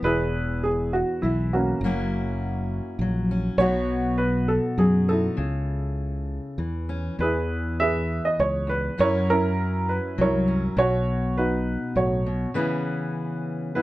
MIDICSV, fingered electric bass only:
0, 0, Header, 1, 2, 480
1, 0, Start_track
1, 0, Key_signature, 4, "major"
1, 0, Tempo, 597015
1, 27, Time_signature, 3, 2, 24, 8
1, 11112, End_track
2, 0, Start_track
2, 0, Title_t, "Fingered electric bass"
2, 0, Program_c, 0, 33
2, 21, Note_on_c, 0, 28, 73
2, 822, Note_off_c, 0, 28, 0
2, 990, Note_on_c, 0, 35, 72
2, 1386, Note_off_c, 0, 35, 0
2, 1454, Note_on_c, 0, 30, 85
2, 2249, Note_off_c, 0, 30, 0
2, 2402, Note_on_c, 0, 34, 79
2, 2805, Note_off_c, 0, 34, 0
2, 2876, Note_on_c, 0, 35, 86
2, 3679, Note_off_c, 0, 35, 0
2, 3840, Note_on_c, 0, 42, 73
2, 4243, Note_off_c, 0, 42, 0
2, 4326, Note_on_c, 0, 37, 77
2, 5131, Note_off_c, 0, 37, 0
2, 5290, Note_on_c, 0, 40, 71
2, 5696, Note_off_c, 0, 40, 0
2, 5780, Note_on_c, 0, 40, 76
2, 6583, Note_off_c, 0, 40, 0
2, 6748, Note_on_c, 0, 37, 74
2, 7148, Note_off_c, 0, 37, 0
2, 7229, Note_on_c, 0, 42, 79
2, 8025, Note_off_c, 0, 42, 0
2, 8187, Note_on_c, 0, 36, 79
2, 8584, Note_off_c, 0, 36, 0
2, 8656, Note_on_c, 0, 35, 85
2, 9453, Note_off_c, 0, 35, 0
2, 9613, Note_on_c, 0, 35, 70
2, 10011, Note_off_c, 0, 35, 0
2, 11112, End_track
0, 0, End_of_file